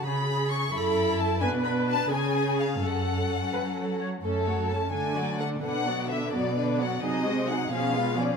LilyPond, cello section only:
\new Staff \with { instrumentName = "Cello section" } { \clef bass \time 6/8 \key fis \minor \tempo 4. = 86 cis4. fis,4. | b,4. cis4. | fis,4. fis4. | fis,4. d4. |
b,4. b,4. | bis,4. b,4. | }